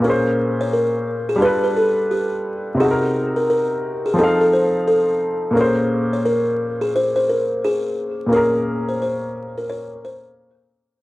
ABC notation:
X:1
M:4/4
L:1/16
Q:"Swing 16ths" 1/4=87
K:Bbm
V:1 name="Kalimba"
B3 d B3 A =B B =A2 =G2 z2 | A3 B B3 A =A A c2 A2 z2 | B3 d B3 A c c B2 A2 z2 | B3 c c3 B d2 c3 z3 |]
V:2 name="Upright piano"
[B,,B,DAc]8 [=G,=DF=A=B]8 | [C,CEG=AB]8 [F,CEAf]8 | [B,,B,DAc]16 | [B,,B,DAB]16 |]